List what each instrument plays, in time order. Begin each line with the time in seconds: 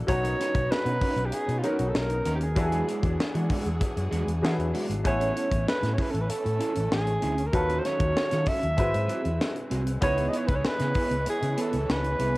Already playing: grand piano F#3 A#3 D4 E4 A4
0.07 fingered electric bass B1, grand piano F#3 B3 C#4 D#4 A#5, string section B3 C#4 D#4, alto saxophone C#5, muted clean electric guitar stroke, kick, closed hi-hat
0.23 clean electric guitar C#4 D#4 A#4, closed hi-hat
0.39 clean electric guitar C#4 D#4 B4, snare, closed hi-hat
0.55 fingered electric bass B1, muted clean electric guitar stroke, kick, closed hi-hat
0.70 alto saxophone B4, muted fingered electric bass stroke, muted clean electric guitar stroke, snare
0.85 fingered electric bass B2, clean electric guitar C#4 D#4 A#4, closed hi-hat
1.01 clean electric guitar C#4 D#4 A#4, kick, open hi-hat
1.16 fingered electric bass B1, muted clean electric guitar stroke, closed hi-hat
1.25 alto saxophone G4
1.32 alto saxophone G#4, muted clean electric guitar stroke, muted fingered electric bass stroke, closed hi-hat
1.48 fingered electric bass B2, muted clean electric guitar stroke, closed hi-hat
1.59 alto saxophone F4
1.63 grand piano F#3 B3 C#4 D#4 A#4, clean electric guitar C#4 D#4 A#4, alto saxophone F#4, closed hi-hat
1.79 fingered electric bass B1, muted clean electric guitar stroke, closed hi-hat
1.89 alto saxophone A4
1.94 fingered electric bass B1, alto saxophone A#4, muted clean electric guitar stroke, snare
2.10 muted clean electric guitar stroke, closed hi-hat
2.25 fingered electric bass D#2, clean electric guitar C#4 D#4 A#4, closed hi-hat
2.35 alto saxophone G4
2.41 alto saxophone G#4, muted clean electric guitar stroke, closed hi-hat
2.55 fingered electric bass E2, string section E3 D4 F#4 G#4, grand piano F#3 B3 D4 E4 F#4, muted clean electric guitar stroke, kick, closed hi-hat
2.64 grand piano G#4
2.72 clean electric guitar G#3 D4 G#4, closed hi-hat
2.87 clean electric guitar G#3 D4 F#4, closed hi-hat
3.03 fingered electric bass E2, muted clean electric guitar stroke, kick, closed hi-hat
3.18 muted clean electric guitar stroke, muted fingered electric bass stroke, snare
3.34 fingered electric bass E3, clean electric guitar G#3 D4 F#4, closed hi-hat
3.50 clean electric guitar G#3 D4 F#4, kick, open hi-hat
3.64 fingered electric bass E2, muted clean electric guitar stroke, closed hi-hat
3.80 muted clean electric guitar stroke, kick, closed hi-hat
3.96 fingered electric bass F#2, muted clean electric guitar stroke, closed hi-hat
4.11 fingered electric bass E2, clean electric guitar G#3 D4 F#4, closed hi-hat
4.26 fingered electric bass E2, muted clean electric guitar stroke, closed hi-hat
4.42 fingered electric bass E3, grand piano F#3 B3 D4 E4 G#4, snare
4.58 fingered electric bass E2, muted clean electric guitar stroke, closed hi-hat
4.74 clean electric guitar G#3 D4 F#4, open hi-hat
4.89 fingered electric bass G#1, muted clean electric guitar stroke, closed hi-hat
5.04 fingered electric bass A1, string section E3 A3 C#4, grand piano A3 B3 C#4 E4 G#5, alto saxophone C#5, muted clean electric guitar stroke, kick, closed hi-hat
5.20 clean electric guitar C#4 E4 G#4, closed hi-hat
5.35 clean electric guitar C#4 E4 A4, closed hi-hat
5.51 fingered electric bass A1, muted clean electric guitar stroke, kick, closed hi-hat
5.67 alto saxophone B4, muted clean electric guitar stroke, muted fingered electric bass stroke, snare
5.82 fingered electric bass A2, clean electric guitar C#4 E4 G#4, snare, closed hi-hat
5.94 clean electric guitar C#4, alto saxophone C#5
5.98 clean electric guitar E4 G#4, alto saxophone B4, kick, open hi-hat
6.10 fingered electric bass A1, alto saxophone A4, muted clean electric guitar stroke
6.14 closed hi-hat
6.21 alto saxophone B4
6.28 alto saxophone A4, muted clean electric guitar stroke, muted fingered electric bass stroke, closed hi-hat
6.44 fingered electric bass A2, muted clean electric guitar stroke, closed hi-hat
6.59 clean electric guitar C#4 E4 G#4, closed hi-hat
6.75 fingered electric bass A1, muted clean electric guitar stroke, closed hi-hat
6.91 fingered electric bass A1, alto saxophone G#4, muted clean electric guitar stroke, snare
7.07 muted clean electric guitar stroke, closed hi-hat
7.22 fingered electric bass D2, clean electric guitar C#4 E4 G#4, closed hi-hat
7.37 muted clean electric guitar stroke, closed hi-hat
7.46 alto saxophone A#4
7.53 fingered electric bass D#2, grand piano D#3 F#3 C#4 F4 A4, string section D#3 F#3 C#4, alto saxophone B4, muted clean electric guitar stroke, kick, closed hi-hat
7.69 clean electric guitar C#4 F#4 B4, closed hi-hat
7.79 alto saxophone C5
7.85 clean electric guitar C#4 F#4 A4, alto saxophone C#5, snare, closed hi-hat
8.00 fingered electric bass D#2, muted clean electric guitar stroke, kick, closed hi-hat
8.15 muted clean electric guitar stroke, muted fingered electric bass stroke, snare
8.30 fingered electric bass D#3, clean electric guitar C#4 F#4 A4, snare, closed hi-hat
8.46 clean electric guitar C#4 F#4 A4, alto saxophone E5, kick, open hi-hat
8.62 fingered electric bass D#2, muted clean electric guitar stroke, closed hi-hat
8.77 fingered electric bass G#1, grand piano G#3 C4 E4 F#4 B4, string section G#3 C4, muted clean electric guitar stroke, kick, closed hi-hat
8.92 fingered electric bass G#2, muted clean electric guitar stroke, closed hi-hat
9.08 clean electric guitar C4 F#4 G#4, closed hi-hat
9.23 fingered electric bass E2, muted clean electric guitar stroke, closed hi-hat
9.41 snare
9.55 muted clean electric guitar stroke, closed hi-hat
9.70 fingered electric bass C2, clean electric guitar C4 F#4 G#4, closed hi-hat
9.85 muted clean electric guitar stroke, closed hi-hat
10.01 fingered electric bass C#2, string section E3 B3 C#4, grand piano B3 C#4 D#4 E4 B4, alto saxophone C#5, muted clean electric guitar stroke, kick, closed hi-hat
10.17 clean electric guitar B3 E4 G#4, closed hi-hat
10.28 alto saxophone D#5
10.33 clean electric guitar B3 E4 B4, closed hi-hat
10.37 alto saxophone C#5
10.47 fingered electric bass C#2, alto saxophone B4, muted clean electric guitar stroke, kick, closed hi-hat
10.55 alto saxophone C#5
10.64 alto saxophone B4, muted clean electric guitar stroke, muted fingered electric bass stroke, snare
10.79 fingered electric bass C#3, clean electric guitar B3 E4 G#4, snare, closed hi-hat
10.94 clean electric guitar B3 E4 G#4, kick, open hi-hat
11.10 fingered electric bass C#2, muted clean electric guitar stroke, closed hi-hat
11.26 alto saxophone G#4, muted clean electric guitar stroke, muted fingered electric bass stroke, closed hi-hat
11.42 fingered electric bass C#3, muted clean electric guitar stroke, closed hi-hat
11.57 clean electric guitar B3 E4 G#4, alto saxophone A4, closed hi-hat
11.73 fingered electric bass C#2, muted clean electric guitar stroke, closed hi-hat
11.88 fingered electric bass C#2, alto saxophone B4, muted clean electric guitar stroke, snare
12.04 muted clean electric guitar stroke, closed hi-hat
12.19 fingered electric bass C2, clean electric guitar B3 E4 G#4, closed hi-hat